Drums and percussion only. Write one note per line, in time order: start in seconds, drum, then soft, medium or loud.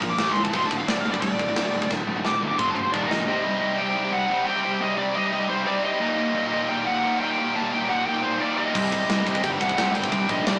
0.02 kick medium
0.02 crash medium
0.18 snare loud
0.18 crash medium
0.36 crash medium
0.45 kick medium
0.53 kick medium
0.53 crash medium
0.71 kick medium
0.71 crash medium
0.88 snare loud
0.88 crash medium
1.05 crash medium
1.14 kick loud
1.22 kick loud
1.22 crash medium
1.39 kick medium
1.39 crash medium
1.56 snare loud
1.56 crash medium
1.74 crash medium
1.82 kick medium
1.91 kick loud
1.91 snare medium
2.25 snare medium
2.58 kick loud
2.58 mid tom medium
2.76 mid tom medium
2.94 kick loud
3.11 snare medium
8.75 kick loud
8.75 crash loud
8.92 kick medium
8.92 ride medium
9.10 snare loud
9.10 ride loud
9.27 kick medium
9.27 ride medium
9.35 kick medium
9.44 kick loud
9.44 ride loud
9.61 kick medium
9.61 ride medium
9.69 kick medium
9.78 snare loud
9.78 ride loud
9.95 ride medium
10.04 kick medium
10.12 kick loud
10.12 ride loud
10.29 kick medium
10.29 ride medium
10.47 snare loud
10.47 ride loud